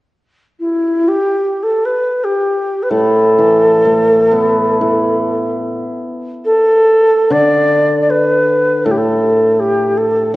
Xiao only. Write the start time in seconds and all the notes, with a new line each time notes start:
0.60 E4
1.08 G4
1.63 A4
1.85 B4
2.24 G4
2.83 B4
2.90 A4
6.45 A4
7.31 D5
8.01 D5
8.10 B4
8.85 A4
8.91 G4
8.98 A4
9.60 G4
9.98 A4